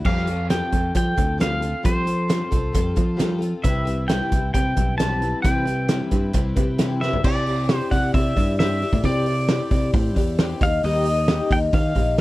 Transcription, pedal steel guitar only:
0.06 F5
0.51 G5
0.97 G5
1.41 F5
1.86 C5
3.64 E5
4.08 G5
4.54 G5
4.98 A5
5.42 G5
7.01 E5
7.25 D5
7.77 C5
7.91 F#5
8.14 E5
8.59 E5
9.05 D5
10.63 F5
10.85 D#5
11.52 G5
11.74 F5

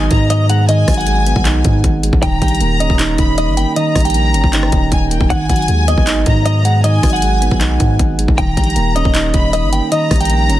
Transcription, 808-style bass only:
0.11 G#2
0.88 G#1
1.36 B1
1.65 G#2
1.84 G#1
2.13 G#1
2.23 D#1
2.42 A#1
2.61 D#1
2.90 D#1
3.19 D#1
3.48 G1
3.96 A#1
4.34 G1
4.44 G1
4.73 D#1
4.92 D#1
5.21 D#1
5.30 G#1
5.50 G#1
5.69 D#2
5.98 G#1
6.26 G#2
7.03 G#1
7.51 B1
7.80 G#2
7.99 G#1
8.28 G#1
8.38 D#1
8.57 A#1
8.76 D#1
9.05 D#1
9.34 D#1
9.63 G1
10.11 A#1
10.50 G1

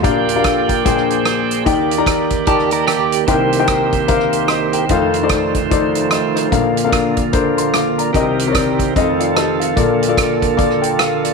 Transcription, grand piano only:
0.03 A#1 A#2 D4 G4 A#4 F5
0.35 D4 G4 A#4 F5
0.43 A4 F5
0.68 A#4 G5
0.85 A#1 A#2 D4 G#4 C5 G5
1.66 D#2 D#3 D#4 A#4 D5 G5
1.98 D#4 A#4 D5 A#5
2.47 D#4 A#4 D5 A5
3.27 C2 C3 D#4 A#4 C5 G5
3.59 D#4 A#4 C5 G5
4.08 D#4 A#4 C5 F5
4.49 D#5 C6
4.73 A#4 G5
4.90 F1 F2 D#4 A4 C5 F5
5.23 D#4 A4 C5 D5
5.71 D#4 A4 C5 D5
6.10 D#5 C6
6.35 D#4 C5
6.52 A#1 A#2 D4 A4 A#4 F5
6.84 C4 A4 A#4 F5
6.89 D4
7.33 D4 A4 A#4 C5
7.57 C6
7.74 F5 D6
7.98 D5 A#5
8.15 C2 C3 C4 G4 A#4 D#5
8.47 C4 G4 A#4 C#5
8.52 D5
8.96 F1 F2 C4 F4 G#4 D#5
9.01 A4
9.20 F4 D5 F5
9.35 G4 D#5 A5
9.60 A4 F5
9.76 A#1 A#2 A#3 F4 A4 D5
10.08 A#3 F4 A4 D5
10.57 A#3 F4 A4 D5
10.82 A#4 G5
10.99 A4 F5
11.23 F4 D5

